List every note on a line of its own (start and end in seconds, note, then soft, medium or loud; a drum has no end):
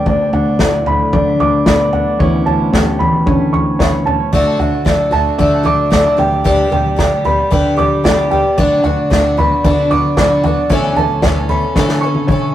0.00 0.86 D3 medium
0.00 1.67 B3 medium
0.06 1.37 D2 medium
0.06 0.29 D2 medium
0.06 0.32 D4 medium
0.06 0.59 D5 medium
0.06 kick loud
0.06 floor tom medium
0.33 1.02 D2 medium
0.33 0.60 D4 medium
0.33 1.40 F#5 medium
0.33 floor tom medium
0.59 1.13 E4 medium
0.59 1.12 D5 medium
0.59 kick medium
0.59 snare medium
0.59 floor tom medium
0.86 2.20 D3 medium
0.86 1.93 B5 medium
0.86 floor tom medium
1.13 2.04 D3 medium
1.13 1.93 D4 medium
1.13 1.65 D5 medium
1.13 kick medium
1.13 floor tom medium
1.39 2.18 D2 medium
1.39 2.20 D6 medium
1.39 floor tom medium
1.66 2.17 B3 medium
1.66 2.20 D5 medium
1.66 kick loud
1.66 snare loud
1.66 floor tom medium
1.93 2.20 D4 medium
1.93 2.20 F#5 medium
1.93 floor tom medium
2.19 3.52 D2 medium
2.19 2.43 D2 medium
2.19 2.98 E3 medium
2.19 3.78 B3 medium
2.19 2.46 C#4 medium
2.19 2.74 E4 medium
2.19 2.71 C#5 medium
2.19 kick loud
2.19 floor tom medium
2.46 3.15 D2 medium
2.46 3.26 C#4 medium
2.46 3.53 A5 medium
2.46 floor tom medium
2.73 4.30 G4 medium
2.73 3.25 C#5 medium
2.73 kick medium
2.73 snare medium
2.73 floor tom medium
2.99 4.30 E3 medium
2.99 4.06 B5 medium
2.99 floor tom medium
3.26 4.18 D3 medium
3.26 4.05 C#4 medium
3.26 3.78 C#5 medium
3.26 kick loud
3.26 floor tom medium
3.53 6.46 D2 medium
3.53 4.33 C#6 medium
3.53 floor tom medium
3.79 4.30 B3 soft
3.79 4.33 C#5 medium
3.79 kick loud
3.79 snare loud
3.79 floor tom medium
4.06 4.30 C#4 medium
4.06 4.32 A5 medium
4.06 floor tom medium
4.33 4.56 D2 medium
4.33 4.59 D3 medium
4.33 4.60 A3 medium
4.33 4.59 D4 medium
4.33 4.58 F#4 loud
4.33 4.84 D5 medium
4.33 kick medium
4.33 floor tom medium
4.59 5.28 D2 medium
4.59 4.85 A3 soft
4.59 4.85 D4 soft
4.59 4.86 F#4 soft
4.59 5.66 F#5 medium
4.59 floor tom medium
4.85 5.12 D3 medium
4.85 5.13 A3 medium
4.85 5.11 D4 medium
4.85 5.10 F#4 medium
4.85 5.37 D5 medium
4.85 kick medium
4.85 snare medium
4.85 floor tom medium
5.11 5.38 A3 soft
5.11 5.39 D4 soft
5.11 5.38 F#4 medium
5.11 6.19 A5 medium
5.11 floor tom medium
5.38 6.07 D3 medium
5.38 5.66 D3 medium
5.38 5.65 A3 medium
5.38 5.64 D4 medium
5.38 5.62 F#4 medium
5.38 5.91 D5 medium
5.38 kick medium
5.38 floor tom medium
5.63 5.89 A3 soft
5.63 5.91 D4 medium
5.63 5.91 F#4 medium
5.63 6.19 D6 medium
5.63 floor tom medium
5.90 6.18 D3 medium
5.90 6.18 A3 medium
5.90 6.18 D4 medium
5.90 6.16 F#4 medium
5.90 6.19 D5 medium
5.90 kick medium
5.90 snare loud
5.90 floor tom medium
6.17 6.64 D2 medium
6.17 6.44 G3 soft
6.17 6.44 B3 soft
6.17 6.44 G4 medium
6.17 6.71 G5 medium
6.17 floor tom medium
6.44 6.71 D3 medium
6.44 6.71 G3 medium
6.44 6.71 B3 medium
6.44 6.68 G4 loud
6.44 6.97 D5 medium
6.44 kick loud
6.44 floor tom medium
6.70 7.41 D2 medium
6.70 6.96 G3 soft
6.70 6.97 B3 medium
6.70 6.97 G4 soft
6.70 7.79 G5 medium
6.70 floor tom medium
6.96 7.24 D3 medium
6.96 7.25 G3 medium
6.96 7.25 B3 medium
6.96 7.23 G4 medium
6.96 7.50 D5 medium
6.96 kick medium
6.96 snare medium
6.96 floor tom medium
7.25 7.50 G3 soft
7.25 7.51 B3 soft
7.25 7.52 G4 medium
7.25 8.31 B5 medium
7.25 floor tom medium
7.51 7.78 D3 medium
7.51 8.43 D3 medium
7.51 7.78 G3 medium
7.51 7.78 B3 medium
7.51 7.75 G4 medium
7.51 8.03 D5 medium
7.51 kick medium
7.51 floor tom medium
7.77 8.04 G3 soft
7.77 8.05 B3 medium
7.77 8.04 G4 medium
7.77 8.58 D6 medium
7.77 floor tom medium
8.04 8.31 D3 medium
8.04 8.31 G3 medium
8.04 8.32 B3 medium
8.04 8.30 G4 medium
8.04 8.56 D5 medium
8.04 kick loud
8.04 snare loud
8.04 floor tom medium
8.31 8.58 G3 soft
8.31 8.57 B3 soft
8.31 8.58 G4 medium
8.31 8.58 G5 medium
8.31 floor tom medium
8.58 8.81 D2 medium
8.58 8.84 D3 medium
8.58 8.85 B3 loud
8.58 8.84 D4 loud
8.58 8.83 F#4 medium
8.58 9.09 D5 medium
8.58 kick loud
8.58 floor tom medium
8.84 9.52 D2 medium
8.84 9.10 B3 soft
8.84 9.11 D4 soft
8.84 9.11 F#4 medium
8.84 9.90 F#5 medium
8.84 floor tom medium
9.10 9.37 D3 medium
9.10 9.37 B3 medium
9.10 9.38 D4 medium
9.10 9.36 F#4 medium
9.10 9.63 D5 medium
9.10 kick medium
9.10 snare loud
9.10 floor tom medium
9.37 9.63 B3 soft
9.37 9.64 D4 soft
9.37 9.64 F#4 medium
9.37 10.44 B5 medium
9.37 floor tom medium
9.64 9.91 D3 medium
9.64 10.55 D3 loud
9.64 9.91 B3 medium
9.64 9.91 D4 medium
9.64 9.90 F#4 medium
9.64 10.15 D5 medium
9.64 kick medium
9.64 floor tom medium
9.91 10.16 B3 soft
9.91 10.18 D4 soft
9.91 10.17 F#4 medium
9.91 10.70 D6 medium
9.91 floor tom medium
10.17 10.43 D3 medium
10.17 10.44 B3 medium
10.17 10.44 D4 medium
10.17 10.42 F#4 medium
10.17 10.70 D5 medium
10.17 kick loud
10.17 snare loud
10.17 floor tom medium
10.44 10.69 B3 soft
10.44 10.71 D4 soft
10.44 10.70 F#4 medium
10.44 10.70 F#5 medium
10.44 floor tom medium
10.70 10.93 D2 medium
10.70 10.96 D3 medium
10.70 10.97 E3 medium
10.70 10.97 B3 medium
10.70 10.97 C#4 loud
10.70 10.95 A4 medium
10.70 11.21 C#5 medium
10.70 kick loud
10.70 floor tom medium
10.96 11.65 D2 medium
10.96 11.22 B3 soft
10.96 11.23 C#4 medium
10.96 11.23 A4 soft
10.96 12.02 A5 medium
10.96 floor tom medium
11.22 11.49 E3 medium
11.22 11.50 B3 medium
11.22 11.50 C#4 medium
11.22 11.48 A4 medium
11.22 11.74 C#5 medium
11.22 kick loud
11.22 snare medium
11.22 floor tom medium
11.49 11.76 B3 soft
11.49 11.77 C#4 medium
11.49 11.76 A4 medium
11.49 12.55 B5 medium
11.49 floor tom medium
11.75 12.55 D3 medium
11.75 12.03 D3 medium
11.75 12.03 E3 medium
11.75 12.03 B3 medium
11.75 12.03 C#4 medium
11.75 12.02 A4 medium
11.75 12.26 C#5 medium
11.75 kick medium
11.75 snare medium
11.88 snare medium
12.01 12.29 C#4 medium
12.01 12.29 A4 medium
12.01 12.55 C#6 medium
12.06 12.29 B3 soft
12.15 high tom medium
12.27 12.55 E3 soft
12.27 12.55 B3 medium
12.27 12.55 C#4 medium
12.27 12.55 C#5 medium
12.27 kick medium
12.27 mid tom medium
12.32 12.53 A4 medium